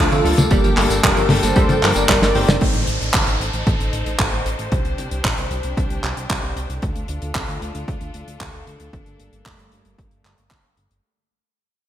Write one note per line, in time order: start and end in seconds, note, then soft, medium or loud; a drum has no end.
0.00 0.22 F3 medium
0.00 0.22 A3 medium
0.00 0.22 D4 medium
0.00 0.49 A4 medium
0.00 0.22 C5 medium
0.00 0.49 D5 medium
0.00 0.49 F5 medium
0.00 2.57 D6 medium
0.11 0.21 D2 medium
0.11 0.16 C3 loud
0.11 0.47 F4 medium
0.11 0.47 A4 loud
0.11 closed hi-hat soft
0.11 tambourine soft
0.25 0.35 D2 medium
0.25 0.33 D3 medium
0.25 0.74 G3 medium
0.25 0.74 A#3 medium
0.25 0.74 D4 medium
0.25 0.74 A4 medium
0.25 open hi-hat loud
0.37 0.48 D2 medium
0.37 0.43 F3 medium
0.37 closed hi-hat medium
0.37 high tom medium
0.37 tambourine medium
0.51 0.61 G1 loud
0.51 0.59 G3 loud
0.51 0.98 A#3 medium
0.51 0.98 G4 loud
0.51 2.59 G5 medium
0.51 2.59 A5 medium
0.51 kick loud
0.51 closed hi-hat medium
0.51 tambourine soft
0.64 0.74 G1 medium
0.64 0.69 F3 loud
0.64 closed hi-hat soft
0.64 tambourine soft
0.77 0.87 G1 medium
0.77 1.27 G3 medium
0.77 0.85 A3 medium
0.77 1.27 A#3 medium
0.77 1.27 D4 medium
0.77 1.27 A4 loud
0.77 clap medium
0.77 open hi-hat loud
0.90 1.00 G1 medium
0.90 0.95 A#3 medium
0.90 closed hi-hat medium
0.90 tambourine medium
1.03 1.14 F1 loud
1.03 1.12 G3 loud
1.03 1.39 G4 medium
1.03 1.39 A#4 loud
1.03 kick loud
1.03 clap loud
1.03 closed hi-hat medium
1.17 1.27 G1 medium
1.17 1.22 F3 loud
1.17 closed hi-hat soft
1.17 tambourine soft
1.29 1.40 G1 medium
1.29 1.40 G3 medium
1.29 1.38 A3 medium
1.29 1.40 A#3 medium
1.29 1.40 D4 medium
1.29 1.40 A4 medium
1.29 open hi-hat loud
1.29 high tom medium
1.43 1.53 G1 medium
1.43 1.79 G3 medium
1.43 1.48 A#3 medium
1.43 1.79 A#3 medium
1.43 1.79 D4 medium
1.43 1.79 A4 loud
1.43 1.90 A4 medium
1.43 1.90 C5 loud
1.43 closed hi-hat medium
1.43 tambourine medium
1.56 1.66 D2 loud
1.56 1.64 G3 loud
1.56 kick loud
1.56 closed hi-hat medium
1.56 tambourine medium
1.69 1.79 G1 medium
1.69 1.74 F3 loud
1.69 closed hi-hat medium
1.69 high tom medium
1.69 tambourine soft
1.83 1.93 G1 loud
1.83 1.91 F3 medium
1.83 2.32 G3 medium
1.83 2.32 A#3 medium
1.83 2.32 D4 medium
1.83 2.32 A#4 medium
1.83 clap medium
1.83 open hi-hat loud
1.95 2.06 G1 medium
1.95 2.04 G2 medium
1.95 2.19 A#4 medium
1.95 2.19 D5 medium
1.95 closed hi-hat medium
1.95 tambourine medium
2.09 2.19 G1 loud
2.09 2.17 G3 medium
2.09 kick loud
2.09 snare medium
2.09 clap loud
2.09 closed hi-hat medium
2.22 2.32 G1 medium
2.22 2.30 A3 medium
2.22 2.57 A#4 medium
2.22 2.57 D5 loud
2.22 snare medium
2.22 closed hi-hat soft
2.22 tambourine soft
2.35 2.45 G1 medium
2.35 2.85 A3 medium
2.35 2.85 C4 medium
2.35 2.85 D#4 medium
2.35 2.47 G4 medium
2.35 2.85 C5 medium
2.35 open hi-hat loud
2.48 2.58 G1 medium
2.48 2.56 D4 medium
2.48 snare medium
2.48 closed hi-hat medium
2.48 high tom medium
2.48 tambourine medium
2.61 2.72 A1 loud
2.61 4.70 D#4 medium
2.61 4.70 A4 medium
2.61 6.79 C5 medium
2.61 kick loud
2.61 closed hi-hat medium
2.61 downlifter medium
2.74 2.85 A1 medium
2.74 closed hi-hat soft
2.87 2.98 A1 medium
2.87 closed hi-hat medium
3.01 3.11 A1 medium
3.01 closed hi-hat medium
3.14 3.24 G1 loud
3.14 kick loud
3.14 clap loud
3.14 closed hi-hat medium
3.27 3.37 A1 medium
3.27 closed hi-hat medium
3.40 3.50 A1 medium
3.40 closed hi-hat medium
3.53 3.64 A1 medium
3.53 closed hi-hat medium
3.67 3.77 A1 loud
3.67 kick loud
3.67 closed hi-hat medium
3.80 3.90 A1 medium
3.80 closed hi-hat medium
3.93 4.03 A1 medium
3.93 closed hi-hat medium
4.06 4.16 A1 medium
4.06 closed hi-hat medium
4.19 4.29 A1 medium
4.19 kick loud
4.19 clap loud
4.19 closed hi-hat medium
4.32 4.43 A1 medium
4.46 4.56 A1 medium
4.46 closed hi-hat medium
4.59 4.69 A1 medium
4.59 closed hi-hat medium
4.72 4.82 C2 loud
4.72 6.81 D4 medium
4.72 6.81 G4 medium
4.72 kick loud
4.72 closed hi-hat medium
4.85 4.95 C2 medium
4.85 closed hi-hat soft
4.98 5.08 C2 medium
4.98 closed hi-hat medium
5.11 5.21 C2 medium
5.11 closed hi-hat medium
5.25 5.35 A#1 loud
5.25 kick loud
5.25 clap loud
5.25 closed hi-hat medium
5.38 5.48 C2 medium
5.38 closed hi-hat medium
5.51 5.61 C2 medium
5.51 closed hi-hat medium
5.63 5.74 C2 medium
5.63 closed hi-hat medium
5.77 5.87 C2 loud
5.77 kick loud
5.77 closed hi-hat medium
5.90 6.00 C2 medium
5.90 closed hi-hat medium
6.03 6.14 C2 medium
6.03 clap medium
6.03 closed hi-hat medium
6.17 6.27 C2 medium
6.17 closed hi-hat medium
6.30 6.40 C2 loud
6.30 kick loud
6.30 clap loud
6.30 closed hi-hat medium
6.43 6.53 C2 medium
6.56 6.66 C2 medium
6.56 closed hi-hat medium
6.70 6.79 C2 medium
6.70 closed hi-hat medium
6.82 6.93 D2 loud
6.82 11.00 D4 medium
6.82 8.91 F4 medium
6.82 11.00 A4 medium
6.82 kick loud
6.82 closed hi-hat medium
6.96 7.06 D2 medium
6.96 closed hi-hat medium
7.08 7.19 D2 medium
7.08 closed hi-hat medium
7.22 7.32 D2 medium
7.22 closed hi-hat medium
7.35 7.45 C2 loud
7.35 kick loud
7.35 clap loud
7.35 closed hi-hat medium
7.48 7.58 D2 medium
7.48 closed hi-hat medium
7.62 7.72 D2 medium
7.62 closed hi-hat medium
7.75 7.85 D2 medium
7.75 closed hi-hat medium
7.88 7.98 D2 loud
7.88 kick loud
7.88 closed hi-hat medium
8.01 8.11 D2 medium
8.01 closed hi-hat medium
8.14 8.24 D2 medium
8.14 closed hi-hat medium
8.28 8.37 D2 medium
8.28 closed hi-hat medium
8.41 8.51 D2 loud
8.41 kick loud
8.41 clap loud
8.41 closed hi-hat medium
8.54 8.64 D2 medium
8.67 8.77 D2 medium
8.67 closed hi-hat medium
8.80 8.90 D2 medium
8.80 closed hi-hat medium
8.93 9.03 G1 medium
8.93 11.02 G3 medium
8.93 11.02 A3 medium
8.93 11.02 A#3 medium
8.93 kick loud
8.93 closed hi-hat medium
9.06 9.16 G1 medium
9.06 closed hi-hat soft
9.20 9.30 G1 medium
9.20 closed hi-hat medium
9.33 9.43 G1 medium
9.33 closed hi-hat medium
9.45 9.56 F1 loud
9.45 kick loud
9.45 clap loud
9.45 closed hi-hat medium
9.59 9.69 G1 medium
9.59 closed hi-hat medium
9.72 9.82 G1 medium
9.72 closed hi-hat medium
9.85 9.95 G1 medium
9.85 closed hi-hat medium
9.98 10.08 G1 loud
9.98 kick loud
9.98 closed hi-hat medium
10.11 10.22 G1 medium
10.11 closed hi-hat soft
10.24 10.35 G1 medium
10.24 clap medium
10.24 closed hi-hat medium
10.38 10.48 G1 medium
10.38 closed hi-hat medium
10.50 10.61 G1 medium
10.50 kick loud
10.50 clap loud
10.50 closed hi-hat medium
10.64 10.74 G1 medium
10.77 10.87 G1 medium
10.77 closed hi-hat medium
10.91 11.01 G1 medium
10.91 closed hi-hat medium